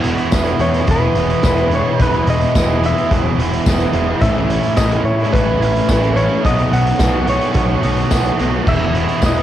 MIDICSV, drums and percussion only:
0, 0, Header, 1, 2, 480
1, 0, Start_track
1, 0, Key_signature, 4, "major"
1, 0, Tempo, 556070
1, 1725, Time_signature, 4, 2, 24, 8
1, 8137, End_track
2, 0, Start_track
2, 0, Title_t, "Drums"
2, 32, Note_on_c, 9, 42, 90
2, 118, Note_off_c, 9, 42, 0
2, 155, Note_on_c, 9, 42, 60
2, 241, Note_off_c, 9, 42, 0
2, 275, Note_on_c, 9, 54, 106
2, 276, Note_on_c, 9, 42, 120
2, 278, Note_on_c, 9, 38, 108
2, 279, Note_on_c, 9, 36, 117
2, 361, Note_off_c, 9, 54, 0
2, 362, Note_off_c, 9, 42, 0
2, 364, Note_off_c, 9, 38, 0
2, 365, Note_off_c, 9, 36, 0
2, 397, Note_on_c, 9, 42, 52
2, 483, Note_off_c, 9, 42, 0
2, 510, Note_on_c, 9, 42, 85
2, 597, Note_off_c, 9, 42, 0
2, 638, Note_on_c, 9, 42, 55
2, 641, Note_on_c, 9, 38, 34
2, 724, Note_off_c, 9, 42, 0
2, 727, Note_off_c, 9, 38, 0
2, 752, Note_on_c, 9, 42, 110
2, 759, Note_on_c, 9, 36, 104
2, 838, Note_off_c, 9, 42, 0
2, 845, Note_off_c, 9, 36, 0
2, 994, Note_on_c, 9, 42, 86
2, 1080, Note_off_c, 9, 42, 0
2, 1119, Note_on_c, 9, 42, 53
2, 1206, Note_off_c, 9, 42, 0
2, 1234, Note_on_c, 9, 42, 113
2, 1236, Note_on_c, 9, 38, 104
2, 1241, Note_on_c, 9, 36, 117
2, 1247, Note_on_c, 9, 54, 117
2, 1320, Note_off_c, 9, 42, 0
2, 1323, Note_off_c, 9, 38, 0
2, 1327, Note_off_c, 9, 36, 0
2, 1333, Note_off_c, 9, 54, 0
2, 1359, Note_on_c, 9, 42, 47
2, 1446, Note_off_c, 9, 42, 0
2, 1477, Note_on_c, 9, 42, 76
2, 1564, Note_off_c, 9, 42, 0
2, 1723, Note_on_c, 9, 42, 112
2, 1724, Note_on_c, 9, 36, 114
2, 1810, Note_off_c, 9, 36, 0
2, 1810, Note_off_c, 9, 42, 0
2, 1842, Note_on_c, 9, 42, 50
2, 1929, Note_off_c, 9, 42, 0
2, 1957, Note_on_c, 9, 42, 87
2, 2044, Note_off_c, 9, 42, 0
2, 2078, Note_on_c, 9, 42, 50
2, 2164, Note_off_c, 9, 42, 0
2, 2202, Note_on_c, 9, 42, 116
2, 2203, Note_on_c, 9, 36, 114
2, 2204, Note_on_c, 9, 54, 106
2, 2205, Note_on_c, 9, 38, 117
2, 2289, Note_off_c, 9, 36, 0
2, 2289, Note_off_c, 9, 42, 0
2, 2291, Note_off_c, 9, 38, 0
2, 2291, Note_off_c, 9, 54, 0
2, 2445, Note_on_c, 9, 42, 87
2, 2531, Note_off_c, 9, 42, 0
2, 2570, Note_on_c, 9, 42, 54
2, 2656, Note_off_c, 9, 42, 0
2, 2685, Note_on_c, 9, 36, 118
2, 2687, Note_on_c, 9, 42, 106
2, 2771, Note_off_c, 9, 36, 0
2, 2774, Note_off_c, 9, 42, 0
2, 2929, Note_on_c, 9, 42, 89
2, 3016, Note_off_c, 9, 42, 0
2, 3050, Note_on_c, 9, 42, 65
2, 3136, Note_off_c, 9, 42, 0
2, 3162, Note_on_c, 9, 54, 118
2, 3164, Note_on_c, 9, 36, 126
2, 3169, Note_on_c, 9, 42, 109
2, 3171, Note_on_c, 9, 38, 119
2, 3248, Note_off_c, 9, 54, 0
2, 3251, Note_off_c, 9, 36, 0
2, 3255, Note_off_c, 9, 42, 0
2, 3258, Note_off_c, 9, 38, 0
2, 3281, Note_on_c, 9, 42, 63
2, 3367, Note_off_c, 9, 42, 0
2, 3395, Note_on_c, 9, 42, 80
2, 3481, Note_off_c, 9, 42, 0
2, 3641, Note_on_c, 9, 42, 123
2, 3642, Note_on_c, 9, 36, 127
2, 3727, Note_off_c, 9, 42, 0
2, 3728, Note_off_c, 9, 36, 0
2, 3884, Note_on_c, 9, 42, 97
2, 3971, Note_off_c, 9, 42, 0
2, 3999, Note_on_c, 9, 42, 58
2, 4085, Note_off_c, 9, 42, 0
2, 4115, Note_on_c, 9, 42, 124
2, 4117, Note_on_c, 9, 38, 123
2, 4119, Note_on_c, 9, 54, 104
2, 4122, Note_on_c, 9, 36, 116
2, 4201, Note_off_c, 9, 42, 0
2, 4204, Note_off_c, 9, 38, 0
2, 4205, Note_off_c, 9, 54, 0
2, 4208, Note_off_c, 9, 36, 0
2, 4242, Note_on_c, 9, 42, 58
2, 4329, Note_off_c, 9, 42, 0
2, 4356, Note_on_c, 9, 42, 81
2, 4443, Note_off_c, 9, 42, 0
2, 4489, Note_on_c, 9, 42, 54
2, 4492, Note_on_c, 9, 38, 39
2, 4576, Note_off_c, 9, 42, 0
2, 4578, Note_off_c, 9, 38, 0
2, 4607, Note_on_c, 9, 36, 120
2, 4612, Note_on_c, 9, 42, 109
2, 4693, Note_off_c, 9, 36, 0
2, 4698, Note_off_c, 9, 42, 0
2, 4854, Note_on_c, 9, 42, 88
2, 4940, Note_off_c, 9, 42, 0
2, 4971, Note_on_c, 9, 42, 58
2, 5057, Note_off_c, 9, 42, 0
2, 5083, Note_on_c, 9, 36, 112
2, 5084, Note_on_c, 9, 54, 113
2, 5087, Note_on_c, 9, 42, 114
2, 5089, Note_on_c, 9, 38, 112
2, 5170, Note_off_c, 9, 36, 0
2, 5170, Note_off_c, 9, 54, 0
2, 5173, Note_off_c, 9, 42, 0
2, 5176, Note_off_c, 9, 38, 0
2, 5206, Note_on_c, 9, 42, 52
2, 5293, Note_off_c, 9, 42, 0
2, 5325, Note_on_c, 9, 42, 80
2, 5411, Note_off_c, 9, 42, 0
2, 5565, Note_on_c, 9, 36, 124
2, 5566, Note_on_c, 9, 42, 108
2, 5652, Note_off_c, 9, 36, 0
2, 5653, Note_off_c, 9, 42, 0
2, 5683, Note_on_c, 9, 42, 54
2, 5769, Note_off_c, 9, 42, 0
2, 5807, Note_on_c, 9, 42, 87
2, 5893, Note_off_c, 9, 42, 0
2, 5926, Note_on_c, 9, 42, 54
2, 6013, Note_off_c, 9, 42, 0
2, 6035, Note_on_c, 9, 42, 111
2, 6038, Note_on_c, 9, 38, 107
2, 6041, Note_on_c, 9, 36, 115
2, 6044, Note_on_c, 9, 54, 106
2, 6121, Note_off_c, 9, 42, 0
2, 6124, Note_off_c, 9, 38, 0
2, 6128, Note_off_c, 9, 36, 0
2, 6130, Note_off_c, 9, 54, 0
2, 6279, Note_on_c, 9, 42, 84
2, 6365, Note_off_c, 9, 42, 0
2, 6397, Note_on_c, 9, 42, 52
2, 6400, Note_on_c, 9, 38, 35
2, 6483, Note_off_c, 9, 42, 0
2, 6486, Note_off_c, 9, 38, 0
2, 6511, Note_on_c, 9, 42, 102
2, 6518, Note_on_c, 9, 36, 120
2, 6597, Note_off_c, 9, 42, 0
2, 6605, Note_off_c, 9, 36, 0
2, 6757, Note_on_c, 9, 42, 93
2, 6844, Note_off_c, 9, 42, 0
2, 6875, Note_on_c, 9, 42, 58
2, 6961, Note_off_c, 9, 42, 0
2, 6995, Note_on_c, 9, 42, 112
2, 6998, Note_on_c, 9, 38, 110
2, 6999, Note_on_c, 9, 54, 113
2, 7001, Note_on_c, 9, 36, 119
2, 7082, Note_off_c, 9, 42, 0
2, 7084, Note_off_c, 9, 38, 0
2, 7086, Note_off_c, 9, 54, 0
2, 7088, Note_off_c, 9, 36, 0
2, 7124, Note_on_c, 9, 42, 56
2, 7211, Note_off_c, 9, 42, 0
2, 7243, Note_on_c, 9, 42, 76
2, 7330, Note_off_c, 9, 42, 0
2, 7483, Note_on_c, 9, 36, 127
2, 7484, Note_on_c, 9, 49, 125
2, 7570, Note_off_c, 9, 36, 0
2, 7570, Note_off_c, 9, 49, 0
2, 7722, Note_on_c, 9, 42, 85
2, 7808, Note_off_c, 9, 42, 0
2, 7841, Note_on_c, 9, 42, 58
2, 7927, Note_off_c, 9, 42, 0
2, 7955, Note_on_c, 9, 54, 92
2, 7959, Note_on_c, 9, 42, 113
2, 7962, Note_on_c, 9, 38, 116
2, 7963, Note_on_c, 9, 36, 109
2, 8042, Note_off_c, 9, 54, 0
2, 8046, Note_off_c, 9, 42, 0
2, 8048, Note_off_c, 9, 38, 0
2, 8049, Note_off_c, 9, 36, 0
2, 8082, Note_on_c, 9, 42, 58
2, 8137, Note_off_c, 9, 42, 0
2, 8137, End_track
0, 0, End_of_file